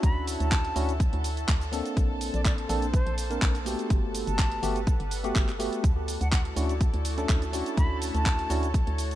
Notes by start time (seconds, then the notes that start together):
Already playing: C#4 D4 E4 F#4 A4 C#5 E5 F#5 A5
0.03 D2 B5, kick, closed hi-hat, shaker
0.27 open hi-hat, shaker
0.40 D2 A5, closed hi-hat, shaker
0.52 kick, clap, closed hi-hat, shaker
0.65 closed hi-hat
0.75 D2 C#4 D4 E4 F#4, open hi-hat, shaker
0.89 closed hi-hat, shaker
1.00 kick, closed hi-hat, shaker
1.13 D2, closed hi-hat
1.24 open hi-hat, shaker
1.37 closed hi-hat, shaker
1.48 D2, kick, clap, closed hi-hat, shaker
1.61 closed hi-hat, shaker
1.72 A#3 C4 D4 A4, open hi-hat, shaker
1.86 closed hi-hat, shaker
1.97 A#1 A#3 D4 A4 C5, kick, closed hi-hat, shaker
2.21 open hi-hat, shaker
2.34 A#1 D5, closed hi-hat, shaker
2.45 D5, kick, clap, closed hi-hat, shaker
2.58 closed hi-hat
2.69 A#1 A#3 C4 D4 A4, open hi-hat, shaker
2.82 closed hi-hat, shaker
2.94 C5, kick, closed hi-hat, shaker
3.06 A#1, closed hi-hat
3.18 open hi-hat, shaker
3.30 A#3 C4 D4 A#4, closed hi-hat, shaker
3.42 A#1, kick, clap, closed hi-hat, shaker
3.55 closed hi-hat, shaker
3.65 A3 B3 F#4 G4, open hi-hat, shaker
3.79 closed hi-hat, shaker
3.90 G1 G3 B4 F#5, kick, closed hi-hat, shaker
4.14 open hi-hat, shaker
4.27 G1 A5, closed hi-hat, shaker
4.39 kick, clap, closed hi-hat, shaker
4.52 closed hi-hat
4.62 G1 A3 B3 F#4 G4, open hi-hat, shaker
4.76 closed hi-hat, shaker
4.87 kick, closed hi-hat, shaker
5.00 G1, closed hi-hat
5.11 open hi-hat, shaker
5.24 A3 B3 F#4 G4, closed hi-hat, shaker
5.35 G1, kick, clap, closed hi-hat, shaker
5.48 clap, closed hi-hat, shaker
5.59 A3 B3 F#4 G4, open hi-hat, shaker
5.73 closed hi-hat, shaker
5.84 D2 A3 E4 F#4 A4 D5 A5, kick, closed hi-hat, shaker
6.08 open hi-hat, shaker
6.21 D2 F#5, closed hi-hat, shaker
6.32 F#5, kick, clap, closed hi-hat, shaker
6.45 closed hi-hat
6.56 D2 C#4 D4 E4 F#4, open hi-hat, shaker
6.69 closed hi-hat, shaker
6.81 kick, closed hi-hat, shaker
6.94 D2, closed hi-hat
7.05 open hi-hat, shaker
7.17 C#4 D4 E4 A4, closed hi-hat, shaker
7.29 D2, kick, clap, closed hi-hat, shaker
7.42 closed hi-hat, shaker
7.52 C#4 D4 E4 F#4, open hi-hat, shaker
7.66 closed hi-hat, shaker
7.77 D2 C#5 B5, kick, closed hi-hat, shaker
8.02 open hi-hat, shaker
8.15 D2 A5, closed hi-hat, shaker
8.26 kick, clap, closed hi-hat, shaker
8.39 closed hi-hat
8.50 D2 C#4 D4 E4 F#4, open hi-hat, shaker
8.63 closed hi-hat, shaker
8.74 kick, closed hi-hat, shaker
8.87 D2, closed hi-hat
8.98 open hi-hat, shaker
9.11 closed hi-hat, shaker